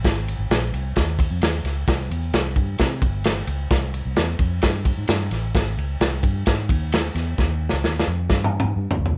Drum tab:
RD |x--x--x--x--x--x--x--x--|x--x--x--x--x--x--x--x--|x--x--x--x--x--x--x--x--|x--x--x--x--x--x--x--x--|
SD |o-----o-----o-----o--o--|o-----o-----o-----o-----|o-----o-----o-----o--o--|o-----o-----o-----o--o--|
T2 |------------------------|------------------------|------------------------|------------------------|
FT |------------------------|------------------------|------------------------|------------------------|
BD |o-----------o--o--------|o--------o--o--o--------|o--------o--o--o--------|o--------o--o--o--------|

RD |------------------------|
SD |o---o-o-o---o-----------|
T2 |--------------o-o-------|
FT |--------------------o-o-|
BD |o-----------o-----------|